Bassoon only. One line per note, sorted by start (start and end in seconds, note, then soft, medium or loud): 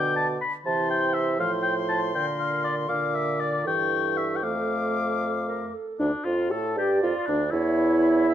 0.00 0.39 B2 soft
0.66 1.35 C3 medium
1.39 2.17 A2 soft
2.15 2.88 A#2 medium
2.89 3.64 A#2 medium
3.66 4.44 G2 soft
4.43 5.74 F2 soft
6.00 6.12 D2 soft
6.25 6.53 F2 medium
6.52 6.79 A2 medium
6.77 7.03 G2 medium
7.03 7.15 F2 soft
7.28 7.52 D2 medium
7.53 8.34 E2 medium